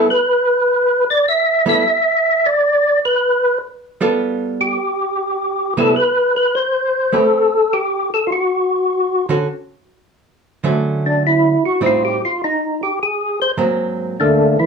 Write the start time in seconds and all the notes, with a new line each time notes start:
0.10 B4
1.10 D5
1.28 E5
1.66 G3 B3 E4 A4 E5
2.46 D5
3.05 B4
4.01 G3 B3 F4 A4
4.61 G4
5.77 C3 G3 B3 E4 A4
5.96 B4
6.36 B4
6.55 C5
7.13 A3 C4 G4 A4 B4
7.73 G4
8.14 A4
8.27 F4
8.32 F#4
9.29 D3 C#4 F#4 A4
10.64 D3 F#3 A3 C#4
11.06 D4
11.27 E4
11.65 F#4
11.81 A2 G3 C4 D#4
11.86 F4
12.05 G4
12.25 F4
12.44 D#4
12.83 G4
13.03 G#4
13.42 C5
13.57 G#2 F#3 A#3 C4
14.20 D3 A3 A#3 D4
14.59 E3 E4